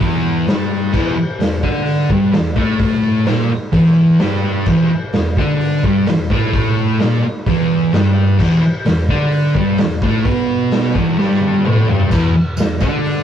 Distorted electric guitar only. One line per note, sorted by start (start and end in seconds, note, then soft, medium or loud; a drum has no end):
0.00 0.46 E2 medium
0.00 0.47 E3 loud
0.47 0.93 G2 medium
0.47 0.94 G3 loud
0.93 1.16 E2 medium
0.93 1.17 E3 loud
1.17 muted distorted electric guitar stroke medium
1.40 1.59 E2 medium
1.63 2.09 D3 loud
1.63 2.10 D4 loud
2.10 2.33 G2 medium
2.10 2.34 G3 medium
2.33 2.52 E2 medium
2.56 3.26 A2 medium
2.56 3.27 A3 medium
3.26 3.49 A#2 loud
3.26 3.50 A#3 loud
3.50 muted distorted electric guitar stroke medium
3.73 4.19 E2 medium
3.73 4.20 E3 loud
4.20 4.66 G2 medium
4.20 4.67 G3 loud
4.67 4.89 E2 medium
4.67 4.90 E3 medium
4.90 muted distorted electric guitar stroke medium
5.14 5.33 E2 medium
5.38 5.83 D3 medium
5.38 5.84 D4 loud
5.84 6.06 G2 medium
5.84 6.07 G3 loud
6.07 6.26 E2 medium
6.30 6.99 A2 medium
6.30 7.00 A3 loud
7.00 7.23 A#2 loud
7.00 7.23 A#3 loud
7.23 muted distorted electric guitar stroke medium
7.47 7.93 E2 medium
7.47 7.94 E3 medium
7.93 8.38 G2 loud
7.93 8.39 G3 loud
8.39 8.61 E2 medium
8.39 8.63 E3 medium
8.62 muted distorted electric guitar stroke medium
8.86 9.04 E2 medium
9.09 9.55 D3 medium
9.09 9.55 D4 loud
9.54 9.77 G2 loud
9.54 9.78 G3 loud
9.79 9.98 E2 medium
10.03 10.25 A2 medium
10.03 10.25 A3 medium
10.25 10.94 B2 medium
10.25 10.94 B3 medium
10.94 11.17 E2 loud
10.94 11.18 E3 loud
11.18 11.64 G2 medium
11.18 11.64 G3 loud
11.65 11.87 A2 medium
11.65 11.88 A3 medium
11.88 12.10 G2 medium
11.88 12.11 G3 medium
12.11 12.33 E2 medium
12.11 12.34 E3 loud
12.35 muted distorted electric guitar stroke medium
12.58 12.76 E2 medium
12.81 13.23 D3 loud
12.81 13.23 D4 loud